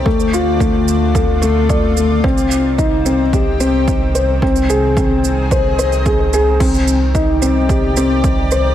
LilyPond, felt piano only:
\new Staff \with { instrumentName = "Felt piano" } { \time 4/4 \key c \minor \tempo 4 = 110 a8 f'8 a8 r8 a'8 a8 d''8 a8 | c'8 r8 ees'8 c'8 g'8 c'8 r8 c''8 | c'8 aes'8 c'8 r8 c''8 c''8 aes'8 aes'8 | c'8 r8 ees'8 c'8 g'8 c'8 r8 c''8 | }